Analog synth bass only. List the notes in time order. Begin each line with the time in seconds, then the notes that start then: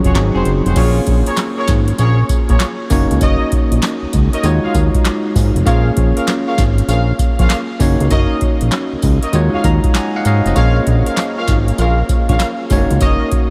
0.05 F1
0.15 G#1
0.35 F1
0.46 F#1
0.66 F1
0.76 A#1
1.07 A#1
1.68 G#1
1.99 A#1
2.49 A#1
2.90 F#1
3.11 C#2
3.21 F#1
3.72 A#1
4.02 C#2
4.14 C#2
4.43 D#2
4.74 D#2
5.36 G#2
5.55 F1
5.66 A#1
5.97 A#1
6.58 G#1
6.88 A#1
7.39 A#1
7.80 F#1
8.01 C#2
8.11 F#1
8.62 A#1
8.93 C#2
9.03 C#2
9.33 D#2
9.64 D#2
10.25 G#2
10.45 F1
10.56 A#1
10.87 A#1
11.48 G#1
11.78 A#1
12.29 A#1
12.70 F#1
12.91 C#2
13.01 F#1